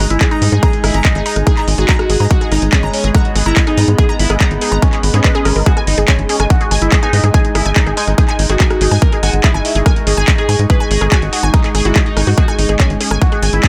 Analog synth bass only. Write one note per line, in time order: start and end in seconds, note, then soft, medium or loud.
0.10 0.18 G#1 medium
0.42 0.49 G#2 medium
0.52 0.59 G#2 medium
0.84 0.91 G#1 medium
0.94 1.01 G#1 medium
1.15 1.22 G#1 medium
1.36 1.43 G#1 medium
1.68 1.75 G#1 loud
1.78 1.85 G#1 medium
2.10 2.17 G#1 medium
2.20 2.27 G#2 medium
2.52 2.59 G#1 loud
2.62 2.69 G#1 medium
2.83 2.90 G#1 medium
3.04 3.11 G#1 medium
3.36 3.43 G#1 loud
3.46 3.53 G#1 medium
3.77 3.85 G#2 medium
3.88 3.95 G#2 medium
4.19 4.27 G#1 loud
4.30 4.37 G#1 medium
4.51 4.58 G#1 medium
4.72 4.79 G#1 medium
5.03 5.11 G#1 loud
5.14 5.21 G#2 medium
5.45 5.53 G#1 medium
5.56 5.63 G#1 medium
5.87 5.94 G#1 medium
5.98 6.05 G#1 medium
6.19 6.26 G#1 medium
6.40 6.47 G#1 medium
6.71 6.78 G#1 loud
6.82 6.89 G#1 medium
7.13 7.20 G#2 medium
7.24 7.31 G#2 medium
7.55 7.62 G#1 loud
7.66 7.73 G#1 medium
7.87 7.94 G#1 medium
8.08 8.15 G#1 medium
8.39 8.46 G#1 loud
8.50 8.57 G#1 medium
8.81 8.88 G#1 medium
8.91 8.99 G#2 medium
9.23 9.30 G#1 loud
9.33 9.41 G#1 medium
9.54 9.62 G#1 medium
9.75 9.83 G#1 medium
10.07 10.14 G#1 loud
10.17 10.25 G#1 medium
10.49 10.56 G#2 medium
10.59 10.66 G#2 medium
10.91 10.98 G#1 medium
11.01 11.08 G#1 medium
11.22 11.29 G#1 medium
11.43 11.50 G#1 medium
11.75 11.82 G#1 medium
11.85 11.92 G#1 medium
12.17 12.24 G#1 loud
12.27 12.34 G#2 medium
12.59 12.66 G#1 loud
12.69 12.76 G#1 medium
12.90 12.97 G#1 medium
13.11 13.18 G#1 medium
13.43 13.50 G#1 loud
13.53 13.60 G#1 medium